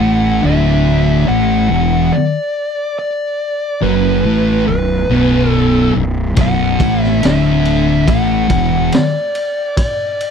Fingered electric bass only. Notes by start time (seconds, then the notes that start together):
0.00 A1
0.42 D1
1.29 A1
1.70 E1
3.83 F#1
4.24 A1
4.68 B0
5.09 B0
5.96 B0
6.37 B0
6.81 A1
7.23 D1
8.08 A1
8.50 E1